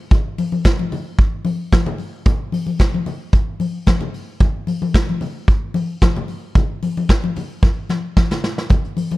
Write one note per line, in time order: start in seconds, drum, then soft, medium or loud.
0.11 kick loud
0.11 closed hi-hat medium
0.11 low conga medium
0.38 open hi-hat medium
0.38 muted conga soft
0.38 high conga medium
0.52 high conga medium
0.64 kick loud
0.64 snare loud
0.64 closed hi-hat medium
0.64 muted conga soft
0.79 high conga medium
0.92 open hi-hat medium
0.92 low conga medium
1.18 kick loud
1.18 closed hi-hat medium
1.45 open hi-hat medium
1.45 high conga medium
1.72 kick loud
1.72 snare loud
1.72 closed hi-hat medium
1.72 muted conga soft
1.72 high conga medium
1.86 low conga medium
1.98 open hi-hat medium
1.98 muted conga soft
2.26 kick loud
2.26 closed hi-hat medium
2.26 low conga medium
2.52 open hi-hat medium
2.52 high conga medium
2.67 high conga medium
2.79 kick loud
2.79 snare loud
2.79 closed hi-hat medium
2.79 muted conga soft
2.94 high conga medium
3.06 open hi-hat medium
3.06 muted conga soft
3.06 low conga medium
3.33 kick loud
3.33 closed hi-hat medium
3.33 muted conga soft
3.60 open hi-hat medium
3.60 high conga medium
3.87 kick loud
3.87 snare medium
3.87 closed hi-hat medium
3.87 high conga medium
4.01 low conga medium
4.14 open hi-hat medium
4.40 kick loud
4.40 closed hi-hat medium
4.40 muted conga soft
4.40 low conga medium
4.67 open hi-hat medium
4.67 high conga medium
4.82 high conga medium
4.94 kick loud
4.94 snare loud
4.94 closed hi-hat medium
4.94 muted conga soft
5.09 high conga medium
5.21 open hi-hat medium
5.21 muted conga soft
5.21 low conga medium
5.48 kick loud
5.48 closed hi-hat medium
5.74 open hi-hat medium
5.74 muted conga soft
5.74 high conga medium
6.01 kick loud
6.01 snare loud
6.01 closed hi-hat medium
6.01 muted conga soft
6.01 high conga medium
6.17 low conga medium
6.28 open hi-hat medium
6.28 muted conga soft
6.55 kick loud
6.55 closed hi-hat medium
6.55 muted conga soft
6.55 low conga medium
6.83 open hi-hat medium
6.83 muted conga soft
6.83 high conga medium
6.97 high conga medium
7.09 kick medium
7.09 snare loud
7.09 closed hi-hat medium
7.09 muted conga soft
7.24 high conga medium
7.36 open hi-hat medium
7.36 muted conga soft
7.36 low conga medium
7.63 kick loud
7.63 snare soft
7.63 muted conga soft
7.89 snare medium
7.89 high conga medium
8.17 kick loud
8.17 snare medium
8.17 muted conga soft
8.17 high conga medium
8.31 snare medium
8.31 low conga medium
8.44 snare medium
8.58 snare medium
8.70 kick loud
8.70 closed hi-hat medium
8.70 muted conga soft
8.70 low conga medium
8.84 closed hi-hat soft
8.97 open hi-hat medium
8.97 muted conga soft
8.97 high conga medium
9.11 closed hi-hat soft
9.11 high conga medium